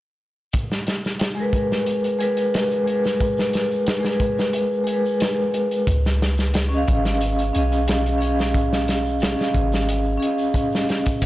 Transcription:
0.53 kick, closed hi-hat, shaker
0.71 snare, shaker
0.87 snare, closed hi-hat
1.04 snare, shaker
1.19 snare, closed hi-hat, shaker
1.35 vibraphone G#3 G#4, shaker
1.40 vibraphone A#4 B4
1.53 kick, closed hi-hat
1.72 snare, shaker
1.86 closed hi-hat, shaker
2.04 closed hi-hat, shaker
2.19 vibraphone G#3 G#4 A#4 B4, closed hi-hat
2.37 closed hi-hat, shaker
2.54 snare, closed hi-hat, shaker
2.70 closed hi-hat, shaker
2.84 vibraphone G#3 G#4, closed hi-hat
2.89 vibraphone A#4 B4
3.04 snare, shaker
3.20 kick, closed hi-hat, shaker
3.37 snare, shaker
3.53 snare, closed hi-hat
3.71 shaker
3.87 snare, closed hi-hat, shaker
4.01 vibraphone G#3 G#4
4.05 vibraphone A#4, snare, shaker
4.09 vibraphone B4
4.20 kick, closed hi-hat
4.39 snare, shaker
4.53 closed hi-hat, shaker
4.71 shaker
4.84 vibraphone G#3 G#4, closed hi-hat
4.90 vibraphone A#4 B4
5.05 shaker
5.20 snare, closed hi-hat, shaker
5.39 shaker
5.54 closed hi-hat
5.71 closed hi-hat, shaker
5.87 808-style bass C#2, kick, closed hi-hat, shaker
6.05 snare, shaker
6.22 snare, closed hi-hat
6.37 snare, shaker
6.54 snare, closed hi-hat, shaker
6.69 vibraphone C#4 G#4, shaker
6.74 vibraphone D#5 F5
6.88 808-style bass G#1, kick, closed hi-hat
7.05 snare, shaker
7.21 closed hi-hat, shaker
7.38 closed hi-hat, shaker
7.53 808-style bass B1, vibraphone C#4 G#4 D#5, closed hi-hat
7.58 vibraphone F5
7.72 closed hi-hat, shaker
7.88 snare, closed hi-hat, shaker
8.06 closed hi-hat, shaker
8.18 vibraphone C#4 G#4, closed hi-hat
8.24 vibraphone D#5 F5
8.39 snare, shaker
8.54 kick, closed hi-hat, shaker
8.73 snare, shaker
8.88 snare, closed hi-hat
9.05 shaker
9.20 snare, closed hi-hat, shaker
9.34 vibraphone C#4 G#4, shaker
9.40 vibraphone D#5 F5, snare
9.54 808-style bass G#1, kick, closed hi-hat
9.72 snare, shaker
9.88 closed hi-hat, shaker
10.05 shaker
10.17 vibraphone C#4 G#4
10.22 vibraphone D#5 F5, closed hi-hat
10.38 shaker
10.54 kick, closed hi-hat, shaker
10.72 snare, shaker
10.89 snare, closed hi-hat
11.05 kick, closed hi-hat, shaker
11.21 808-style bass G#1, kick, closed hi-hat, crash, shaker

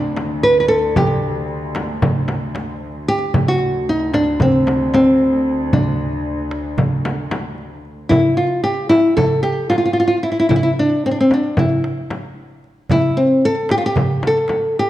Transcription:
Already playing: cello section D2, nylon-string guitar D4
0.17 darbuka tek, frame drum
0.43 nylon-string guitar B4
0.60 nylon-string guitar B4
0.68 nylon-string guitar A4
0.96 nylon-string guitar G4, darbuka dum, frame drum
1.48 darbuka ka
1.75 darbuka tek, frame drum
2.02 frame drum, darbuka dum
2.28 darbuka tek, frame drum
2.55 darbuka tek, frame drum
3.08 nylon-string guitar G4
3.34 cello section D2, frame drum, darbuka dum
3.48 nylon-string guitar F#4
3.88 nylon-string guitar D#4, darbuka ka
4.14 nylon-string guitar D4, darbuka tek, frame drum
4.40 nylon-string guitar C4, frame drum, darbuka dum
4.67 darbuka tek, frame drum
4.94 nylon-string guitar C4, darbuka tek, frame drum
5.73 nylon-string guitar D4, frame drum, darbuka dum
6.00 darbuka ka
6.13 darbuka ka
6.25 darbuka ka
6.51 darbuka tek
6.78 darbuka dum, frame drum
7.05 darbuka tek, frame drum
7.31 darbuka tek, frame drum
7.58 darbuka ka
7.85 darbuka ka
8.09 nylon-string guitar E4, frame drum, darbuka dum
8.37 nylon-string guitar F4
8.64 nylon-string guitar G4, darbuka ka
8.89 nylon-string guitar E4, darbuka tek, frame drum
9.17 nylon-string guitar A4, darbuka dum, frame drum
9.43 nylon-string guitar G4, darbuka tek
9.70 nylon-string guitar F4, darbuka tek, frame drum
9.78 nylon-string guitar F4
9.85 nylon-string guitar F4
9.93 nylon-string guitar F4
10.00 nylon-string guitar F4
10.08 nylon-string guitar F4
10.23 nylon-string guitar E4
10.32 nylon-string guitar E4
10.40 nylon-string guitar E4
10.49 nylon-string guitar E4, darbuka dum, frame drum
10.56 nylon-string guitar E4
10.63 nylon-string guitar E4
10.78 nylon-string guitar D4, darbuka ka
11.06 nylon-string guitar C4
11.11 nylon-string guitar D4
11.20 nylon-string guitar C4
11.31 nylon-string guitar D4, frame drum
11.57 nylon-string guitar E4, frame drum, darbuka dum
11.84 darbuka tek
12.10 darbuka tek, frame drum
12.64 darbuka ka
12.89 nylon-string guitar E4, darbuka dum, frame drum
13.17 nylon-string guitar C4, darbuka ka
13.43 nylon-string guitar A4, darbuka ka
13.69 nylon-string guitar G4, darbuka tek, frame drum
13.78 nylon-string guitar F4
13.86 nylon-string guitar G4
13.96 darbuka dum, frame drum
14.23 darbuka tek, frame drum
14.27 nylon-string guitar A4
14.48 darbuka tek, frame drum
14.79 nylon-string guitar G4

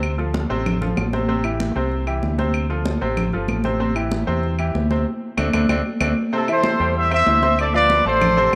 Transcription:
Already playing: fingered electric bass D2, grand piano C3 C4 C5
0.03 high conga, claves
0.18 grand piano F3 F4 A4, high conga
0.34 high conga
0.50 fingered electric bass A1, grand piano C3 C4 C5, high conga
0.66 high conga, low conga, claves
0.81 grand piano F3 F4 A4, high conga, low conga
0.97 fingered electric bass A1, high conga, claves
1.13 grand piano C3 C4 C5, high conga
1.28 grand piano C3 C4 C5, high conga
1.44 grand piano E3 E4 G4, high conga, claves
1.60 high conga
1.76 fingered electric bass C2, grand piano C3 C4 C5, high conga
1.92 high conga
2.07 grand piano E3 E4 G4, high conga, claves
2.23 fingered electric bass D2, high conga
2.38 grand piano C3 C4 C5, high conga
2.54 high conga, claves
2.70 grand piano F3 F4 A4, high conga
2.86 high conga
3.01 fingered electric bass A1, grand piano C3 C4 C5, high conga
3.17 high conga, low conga, claves
3.33 fingered electric bass G1, grand piano F3 F4 A4, high conga
3.48 fingered electric bass A1, high conga, claves
3.64 grand piano C3 C4 C5, high conga
3.80 grand piano C3 C4 C5, high conga
3.95 grand piano E3 E4 G4, high conga, claves
4.12 high conga
4.27 fingered electric bass E2, grand piano C3 C4 C5, high conga
4.43 high conga
4.59 grand piano E3 E4 G4, high conga, claves
4.75 fingered electric bass D2, high conga
4.91 grand piano C3 C4 C5, high conga
5.37 fingered electric bass D2, grand piano A3 C4 D4, high conga, claves
5.53 fingered electric bass D2, grand piano A3 C4 D4, high conga, claves
5.69 fingered electric bass D2, grand piano A3 C4 D4, high conga, claves
6.00 fingered electric bass D2, grand piano A3 C4 D4, high conga, claves
6.32 grand piano C3 C4 C5, trumpet section E4 A4, high conga
6.48 grand piano E3 E4 E5, trumpet section A4 C5, high conga, claves
6.63 high conga
6.80 fingered electric bass E2, grand piano G3 G4 G5, high conga
6.95 trumpet section C5 E5, high conga
7.11 grand piano C4 C5 C6, trumpet section C5 E5, high conga, claves
7.26 fingered electric bass D2, grand piano E3 E4 E5, high conga
7.43 grand piano C4 C5 C6, high conga
7.58 trumpet section A4 D5, high conga, claves
7.74 grand piano F3 F4 F5, trumpet section B4 D5, high conga
7.90 high conga
8.05 fingered electric bass A1, grand piano A3 A4 A5, trumpet section A4 C5, high conga
8.21 high conga, low conga, claves
8.37 grand piano C3 C4 C5, high conga
8.52 fingered electric bass A1

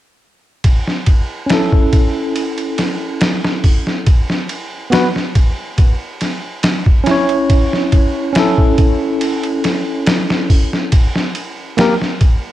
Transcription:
0.64 kick, ride
0.88 snare
1.06 kick, ride
1.46 tine electric piano C#4, snare, ride
1.50 tine electric piano E4 A4
1.72 kick
1.93 kick, ride
2.36 ride
2.58 ride
2.78 snare, ride
3.21 snare, ride
3.45 snare
3.64 kick, open hi-hat
3.87 snare
4.06 kick, ride
4.30 snare
4.49 ride
4.90 tine electric piano B3 F#4 B4, snare, ride
5.16 snare
5.35 kick, ride
5.78 kick, ride
6.21 snare, ride
6.63 snare, ride
6.86 kick
7.04 tine electric piano C#4 E4, snare, ride
7.11 tine electric piano C#5
7.29 ride
7.50 kick, ride
7.73 snare
7.92 kick, ride
8.33 tine electric piano C#4 E4, snare, ride
8.39 tine electric piano A4
8.58 kick
8.78 kick, ride
9.21 ride
9.43 ride
9.64 snare, ride
10.07 snare, ride
10.30 snare
10.50 kick, open hi-hat
10.73 snare
10.92 kick, ride
11.16 snare
11.35 ride
11.77 tine electric piano A#3 G4 A#4, snare, ride
12.02 snare
12.21 kick, ride

